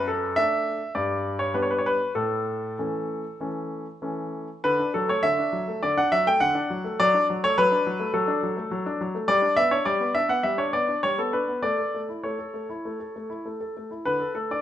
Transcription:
grand piano
Already playing: F#2
0.08 A4
0.36 A3 D4 E5
0.95 G2 D5
1.39 C#5
1.54 G3 B3 D4 B4
1.62 C#5
1.70 B4
1.78 C#5
1.86 B4
2.15 A2 A4
2.78 E3 A3 C#4
3.40 E3 A3 C#4
4.02 E3 A3 C#4
4.64 D3 B4
4.80 D4
4.94 F#3 A4
5.09 A3 C#5
5.23 D3 E5
5.39 D4
5.53 F#3
5.68 A3
5.83 D3 D5
5.97 D4 F#5
6.12 F#3 E5
6.27 A3 G5
6.40 D3 F#5
6.55 D4
6.70 F#3
6.84 A3
7.00 F#3 D5
7.14 D4
7.30 F#3
7.44 A3 C#5
7.58 F#3 B4
7.72 D4
7.86 F#3
7.99 A3
8.14 F#3 A4
8.28 D4
8.43 F#3
8.57 A3
8.71 F#3
8.86 D4
9.01 F#3
9.15 A3
9.28 G3 D5
9.42 D4
9.56 B3 E5
9.71 D4 C#5
9.85 G3 D5
10.00 B3
10.15 D4 E5
10.29 B3 F#5
10.43 G3 E5
10.58 D4 C#5
10.73 B3 D5
10.88 D4
11.03 G3 C#5
11.18 B3 A4
11.33 D4 B4
11.48 B3
11.62 A3 D5
11.78 A4
11.94 A3
12.09 E4
12.23 A3 C#5
12.39 A4
12.54 A3
12.70 E4
12.85 A3
13.00 A4
13.16 A3
13.30 E4
13.45 A3
13.61 A4
13.77 A3
13.91 E4
14.05 D3 B4
14.20 A4
14.35 A3 A4
14.51 D4 D5

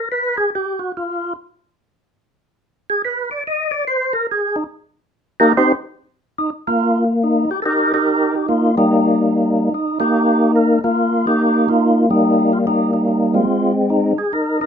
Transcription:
tonewheel organ
0.12 B4
0.37 G#4
0.55 G4
0.79 F#4
0.97 F4
2.90 G#4
3.05 B4
3.31 D5
3.47 D#5
3.71 D5
3.88 C5
4.13 A#4
4.31 G#4
4.56 D#4
5.40 A#3 D#4 G4 A#4
5.57 C4 D#4 G4 C5
6.38 D#4
6.67 A#3 F4
7.24 D#4
7.51 G4
7.62 D#4 G4 A4 A#4
7.94 D#4 G4 A#4
8.35 G4
8.48 A#3 F4
8.77 G3 A#3 D#4
9.74 D#4
10.00 A#3 D#4 G4
10.56 A#4
10.84 A#3 F4
11.27 A#3 D#4 G4
11.68 A#3 F4
12.10 G3 A#3 D#4
12.53 F4
12.67 G3 A#3 D#4
12.93 D#4
13.08 D#4
13.34 G#3 C4 F4
13.90 D#4
14.18 G#4
14.33 D#4 A#4
14.61 D#4 A#4

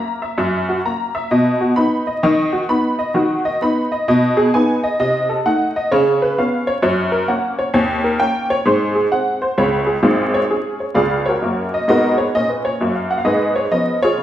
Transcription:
honky-tonk piano
Already playing: A#3 A#5
0.22 E5
0.38 F#2 E5
0.69 F#4
0.86 A#3 A#5
1.15 E5
1.31 B2 D#5
1.61 F#4
1.76 B3 D#4 B5
2.07 D#5
2.23 D#3 D#5
2.53 F#4
2.69 B3 D#4 B5
2.99 D#5
3.14 D#3 F#4
3.45 D#5
3.62 B3 D#4 B5
3.92 D#5
4.08 B2 D#5
4.37 G#4
4.54 B3 D#4 G#5
4.84 D#5
4.99 C3 D#5
5.29 A4
5.46 A3 D#4 F#5
5.76 D#5
5.92 C#3 C#5
6.22 B4
6.38 B3 C#4 F5
6.67 C#5
6.82 F#2 C#5
7.12 A#4
7.28 A#3 C#4 F#5
7.59 C#5
7.74 D#2 C#5
8.04 A#4
8.20 A#3 C#4 G5
8.50 C#5
8.66 G#2 C5
8.95 G#4
9.12 G#3 C4 F#5
9.42 C5
9.58 C#2 C#3 C#5
9.86 G#4
10.03 G#1 G#2 F5
10.34 C#5
10.50 G#3 C#4 G#4
10.80 C#5
10.95 C#2 C#3 F4 G#4 D5 F5
11.26 F#4 A#4 C#5
11.42 F#2 A#3
11.74 D#5
11.88 G#2 B3 F#4 A#4 D#5
12.18 C#5
12.35 A#2 C#4 D#5
12.49 B4
12.65 C#5
12.81 F#2 A#3
12.95 F5
13.11 F#5
13.18 F5
13.25 G#2 G#4 B4 D#5
13.56 C#5
13.71 F3 B3 C#4 D#5
14.02 F4 G#4 C#5
14.18 C#3

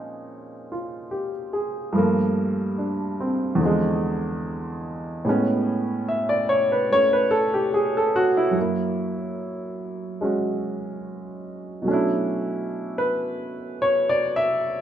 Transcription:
upright piano
Already playing: A#2 F3 G#3 C4 C#4 D#4
0.72 F4
1.11 G4
1.53 G#4
1.93 G2 F3 A3
1.98 A#3
2.78 D4
3.20 C4
3.55 E2 D3
3.62 F3 G#3
5.25 A2 G#3 B3
5.29 C#4
6.08 E5
6.29 D5
6.49 C#5
6.72 B4
6.90 A3 C#4 C#5
7.13 B4
7.31 A4
7.54 G4
7.74 G#4
7.97 A4
8.16 F#4
8.37 E4
8.51 F#2 F#3
8.59 A#3 E4
10.21 G#3 C#4 F#4
11.82 B2 F#3
11.87 A3 C#4
11.91 D4 E4
12.98 B4
13.82 C#5
14.09 D5
14.36 E5

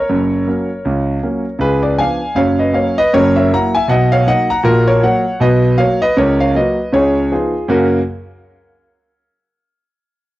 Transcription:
grand piano
Already playing: A#4 C#5
0.09 F#1 F#2
0.47 F#3 A#3 C#4
0.85 C#2 C#3
1.23 F#3 A#3 C#4
1.59 C#2 C#3 G#4 B4
1.83 B4 D5
1.98 F3 B3 D4 F5 G#5
2.35 F#1 F#2 C#5 F5
2.59 B4 D#5
2.73 F#3 A#3 C#4 C#5 F5
2.98 B4 D#5
3.13 F#1 F#2 A#4 C#5
3.36 C#5 E5
3.52 F#3 A#3 E4 F#5 A#5
3.75 E5 G#5
3.88 B1 B2 D#5 F#5
4.12 C#5 F5
4.27 F#3 A#3 D#4 D#5 F#5
4.50 F#5 A#5
4.63 A#1 A#2 F#4 A#4
4.88 A#4 C#5
5.03 F#3 A#3 F#4 C#5 F#5
5.40 B1 B2 B4 D#5
5.78 F#3 A#3 F#4 C#5 F5
6.02 B4 D#5
6.17 C#2 C#3 A#4 C#5
6.41 C#5 F5
6.55 F#3 A#3 F#4 B4 D#5
6.92 C#2 C#3 G#4 C#5
7.31 F3 B3 D#4 F4 G#4
7.68 F#2 C#3 A#3 C#4 F#4 A#4

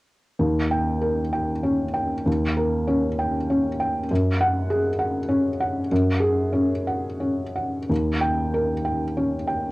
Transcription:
felt piano
0.39 D#2
0.71 G5
1.01 A#4
1.33 G5
1.63 C#4
1.94 G5
2.26 D#2
2.57 A#4
2.88 C#4
3.19 G5
3.50 C#4
3.80 G5
4.11 F#2
4.41 F#5
4.70 G#4
4.99 F#5
5.29 C#4
5.60 F#5
5.92 F#2
6.20 G#4
6.53 C#4
6.87 F#5
7.20 C#4
7.56 F#5
7.89 D#2
8.21 G5
8.54 A#4
8.85 G5
9.17 C#4
9.47 G5

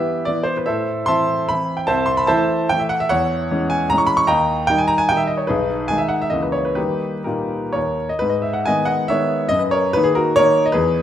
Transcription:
grand piano
Already playing: E3 B3 E4 G4 B4 E5
0.25 E3 B3 E4 D5
0.44 C5
0.57 B4
0.66 A2 A4 C5 E5
1.06 E3 C4 E4 E5 A5 C6
1.49 E3 C4 E4 B5
1.77 G5
1.87 C2 C5 E5 A5
2.06 C6
2.17 B5
2.27 E3 A3 E4 C5 E5 A5
2.69 E3 A3 E4 G5
2.79 E5
2.89 F#5
3.00 E5
3.09 E2 C#5 F#5
3.51 E3 G#3 C#4
3.70 G#5
3.90 E3 G#3 C#4 A#5
3.98 C#6
4.07 B5
4.17 C#6
4.27 D#2 D#5 G5 A#5
4.67 D#3 G3 D#4 G5
4.78 G#5
4.88 A#5
4.98 G#5
5.09 D#3 G3 D#4 G5
5.17 E5
5.27 D#5
5.37 C#5
5.47 B1 D#4 G#4 B4
5.88 D#3 G#3 D#4 G#5
5.98 E5
6.09 F#5
6.22 E5
6.30 C#2 E3 A#3 D#5
6.42 B4
6.52 C#5
6.65 B4
6.75 D#3 G3 A#3 D#4 G4 B4
7.24 A#2 D#4 G4 A#4
7.73 D#2 A#4 C#5
8.09 D#5
8.19 G#2 B4
8.30 D#5
8.42 E5
8.53 F#5
8.65 D#3 G#3 B3 D#5 G#5
8.85 D#5 F#5
9.08 D#3 G#3 B3 C#5 E5
9.49 F#2 D#5
9.59 B4
9.71 A#4 C#5
9.93 D#3 A#3 D#4 B4
10.04 G#4
10.15 F#4 A#4
10.36 D#3 A#3 D#4 A#4 C#5
10.66 D#5
10.72 E2 G#4 B4

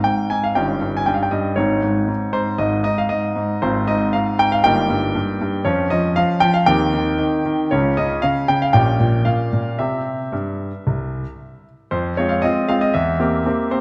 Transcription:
grand piano
Already playing: C4 D#4
0.04 G#2 G5
0.30 G#2 G#5
0.44 F5
0.55 G1 G2 C#4 D#4 G5
0.81 G2
0.97 G#5
1.06 G2 G5
1.14 F5
1.23 G5
1.31 G2 D#5
1.56 G#1 G#2 C4 D#4 C#5
1.83 G#2
2.08 G#2
2.33 G#2 C5
2.58 G#1 G#2 D#5
2.84 G#2 D#5
2.98 F5
3.09 G#2 D#5
3.36 G#2
3.62 G#1 G#2 C4 F4 C5
3.87 G#2 D#5
4.13 G#2 F5
4.39 G#2 G5
4.52 F5
4.64 G1 G2 A#3 D#4 G5
4.90 G2
5.15 G2
5.41 G2
5.65 F2 F3 C#4 F4 C#5
5.90 F3 D#5
6.16 F3 F5
6.40 F3 G5
6.54 F5
6.66 D#2 D#3 C4 G4 G5
6.94 D#3
7.19 D#3
7.46 D#3
7.71 C#2 C#3 C#4 F4 C#5
7.97 C#3 D#5
8.22 C#3 F5
8.48 C#3 G5
8.62 F5
8.73 A#1 A#2 C#4 G4 G5
9.00 A#2
9.25 A#2 F5
9.53 A#2
9.79 C3 C4 G4 E5
10.32 G2
10.87 C2
11.91 F2 C5
12.17 G#3 C4 F4 C#5
12.29 F5
12.42 G#3 C4 F4 D#5
12.68 G#3 C4 F4 F5
12.81 D#5
12.94 E2 E5
13.19 A#3 C4 G4
13.46 A#3 C4 G4
13.71 A#3 C4 G4 C5

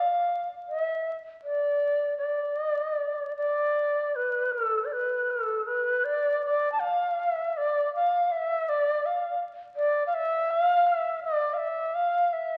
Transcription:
shakuhachi
Already playing: F5
0.69 E5
1.43 D5
2.18 D5
3.37 D5
4.16 B4
4.52 A4
4.85 D5
4.93 B4
5.31 A4
5.67 B4
6.04 D5
6.45 D5
6.72 A5
6.81 F5
7.19 E5
7.57 D5
7.95 F5
8.32 E5
8.69 D5
9.06 F5
9.76 D5
10.07 F5
10.14 E5
10.51 F5
10.87 E5
11.24 D5
11.54 E5 F5
11.95 F5
12.33 E5

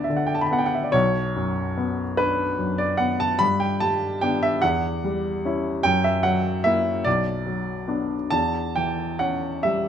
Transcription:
grand piano
Already playing: D2 D3 B3 D4 D5 E5 F#5 G5
0.04 E5
0.10 D3
0.17 F#5
0.27 G5
0.35 A5
0.41 B5
0.47 A5
0.51 B3 F#5
0.59 G5
0.66 F#5
0.75 E5
0.83 D5
0.92 B1 C#5
1.36 F#2
1.78 B3
2.17 D4 B4
2.59 F#2
2.78 D5
2.97 B3 F#5
3.20 A5
3.39 G2 B5
3.60 G5
3.80 G3 A5
4.21 B3 D4 G5
4.43 E5
4.62 E2 F#5
5.04 G3
5.45 C#4 E4
5.83 F#2 G5
6.04 E5
6.23 F#3 F#5
6.64 A#3 E4 E5
7.04 B1 D5
7.46 F#3
7.88 B3 D4
8.30 E2 A5
8.76 E3 G5
9.19 C#4 F#5
9.63 G3 E5

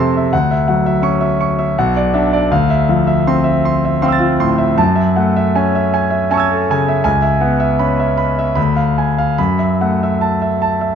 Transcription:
grand piano
Already playing: F2 A3 C4 A4 E5 F5 A5 E6 A6
0.00 C3 C6
0.17 E5
0.33 D2 F#5
0.51 E5
0.68 F#3 F#5
0.86 E5
1.02 C#4 C#6
1.21 E5
1.40 C#6
1.59 E5
1.78 B1 F#5
1.96 D5
2.14 D4 E5
2.33 D5
2.51 D2 F5
2.70 E5
2.89 F3 F5
3.07 E5
3.27 C4 C6
3.44 E5
3.65 C6
3.85 E5
4.02 C4 F5 C6
4.08 E6
4.12 A6
4.19 F4
4.40 A2 C6
4.58 E5
4.78 F#2 A5
4.96 E5
5.16 A3 F#5
5.36 E5
5.55 C#4 G#5
5.75 E5
5.94 G#5
6.10 E5
6.30 C#4 G#5 A5 C#6
6.37 E6 G#6
6.51 A4
6.70 C#3 G#5
6.88 E5
7.04 C#2 G#5
7.22 E5
7.41 B3 F#5
7.60 E5
7.79 C#4 B5
8.00 E5
8.18 B5
8.39 E5
8.55 D2 B5
8.76 F5
8.98 G#5
9.18 F5
9.38 F#2 B5
9.59 E5
9.81 A3 F#5
10.03 E5
10.21 A5
10.42 E5
10.62 A5
10.81 E5

